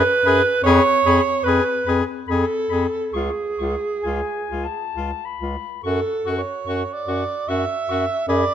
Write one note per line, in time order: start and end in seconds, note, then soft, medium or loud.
0.00 0.63 B4 loud
0.25 0.41 F#2 medium
0.25 0.42 G#4 medium
0.25 0.42 B5 medium
0.64 0.80 F2 medium
0.64 0.82 G#4 medium
0.64 1.45 C#5 loud
0.64 0.82 B5 medium
1.04 1.20 F2 medium
1.04 1.22 G#4 medium
1.04 1.22 B5 medium
1.44 1.61 F2 medium
1.44 1.63 G#4 medium
1.44 1.99 B4 loud
1.44 1.62 B5 medium
1.86 2.02 F2 medium
1.86 2.04 G#4 medium
1.86 2.02 B5 medium
2.28 2.44 F2 medium
2.28 2.45 G#4 medium
2.28 3.15 A4 medium
2.28 2.44 B5 medium
2.69 2.86 F2 medium
2.69 2.88 G#4 medium
2.69 2.85 B5 soft
3.13 3.29 C#2 medium
3.13 3.31 F4 medium
3.13 4.95 G#4 medium
3.13 3.29 C#6 medium
3.58 3.75 C#2 medium
3.58 3.76 F4 soft
3.58 3.74 C#6 soft
4.03 4.21 C#2 soft
4.03 4.21 F4 soft
4.03 4.66 G#5 medium
4.50 4.66 C#2 soft
4.50 4.67 F4 soft
4.64 5.27 A5 medium
4.95 5.11 C#2 medium
4.95 5.11 F4 soft
5.25 5.83 B5 medium
5.40 5.56 C#2 soft
5.40 5.57 F4 soft
5.83 6.00 F#2 medium
5.83 6.00 F#4 medium
5.83 6.40 A4 medium
5.83 5.99 C#6 soft
6.25 6.42 F#2 medium
6.25 6.42 F#4 soft
6.25 6.41 C#6 soft
6.38 6.95 C#5 medium
6.66 6.83 F#2 medium
6.66 6.83 F#4 soft
6.66 6.82 C#6 medium
6.94 7.50 D5 medium
7.07 7.23 F#2 medium
7.07 7.24 F#4 soft
7.07 7.24 C#6 soft
7.48 7.65 F#2 medium
7.48 7.65 F#4 soft
7.48 8.28 E5 medium
7.48 7.64 C#6 soft
7.89 8.06 F#2 medium
7.89 8.05 F#4 medium
7.89 8.05 C#6 soft
8.28 8.44 F#2 medium
8.28 8.45 G#4 medium
8.28 8.54 D5 loud
8.28 8.45 B5 medium